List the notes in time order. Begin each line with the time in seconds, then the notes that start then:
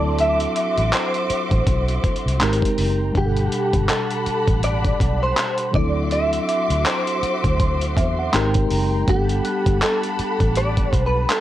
Already playing: D2 F#3 C4 D4 E4 F#4 A4 D5 E5 A5 C6 D6
0.08 C6
0.19 E5, closed hi-hat
0.29 D6
0.40 closed hi-hat
0.56 closed hi-hat
0.78 A1, closed hi-hat
0.93 C5, clap, closed hi-hat
1.14 closed hi-hat
1.30 muted fingered electric bass stroke, closed hi-hat
1.51 A1, kick, closed hi-hat
1.67 B1, kick, closed hi-hat
1.89 closed hi-hat
2.04 muted fingered electric bass stroke, kick, closed hi-hat
2.16 closed hi-hat
2.26 C2, closed hi-hat
2.40 G#1 G#3 C4 D#4 G4 A#4 G5 A#5, clap, closed hi-hat
2.53 closed hi-hat
2.62 kick, closed hi-hat
2.78 F#1, open hi-hat
3.12 G1 B2 G3 D4 G4 F#5 A5 B5, kick, closed hi-hat
3.17 G4 F#5
3.26 A4
3.37 closed hi-hat
3.52 closed hi-hat
3.74 G1, kick, closed hi-hat
3.89 A4, clap, closed hi-hat
4.11 closed hi-hat
4.26 muted fingered electric bass stroke, closed hi-hat
4.48 A1, kick, closed hi-hat
4.63 D5, closed hi-hat
4.85 kick, closed hi-hat
5.00 B1, kick, closed hi-hat
5.23 C5
5.37 clap, closed hi-hat
5.58 closed hi-hat
5.72 D2 F3 C4 D4 F#4 D5 E5 C6 D6, kick
5.77 F#3 E4 A4
6.11 E5, closed hi-hat
6.33 closed hi-hat
6.49 D6, closed hi-hat
6.70 D2, closed hi-hat
6.86 C5, clap, closed hi-hat
7.07 closed hi-hat
7.23 muted fingered electric bass stroke, closed hi-hat
7.44 D2, kick, closed hi-hat
7.60 C6, kick, closed hi-hat
7.81 closed hi-hat
7.97 E2 E5, kick, closed hi-hat
8.19 F#5
8.33 G#1 G#3 C4 D#4 G4 A#4 G5 A#5, clap, closed hi-hat
8.54 kick, closed hi-hat
8.71 F#1 A#5, open hi-hat
9.05 G1 G3 A3 D4 G4 F#5 A5 B5, kick, closed hi-hat
9.09 B3 G4 A4 F#5
9.29 closed hi-hat
9.45 F#6, closed hi-hat
9.66 G1, kick, closed hi-hat
9.82 A4, clap, closed hi-hat
10.03 closed hi-hat
10.19 muted fingered electric bass stroke, closed hi-hat
10.40 A1, kick, closed hi-hat
10.56 D5, closed hi-hat
10.77 kick, closed hi-hat
10.93 B1, kick, closed hi-hat
11.06 B4
11.30 A4, clap, closed hi-hat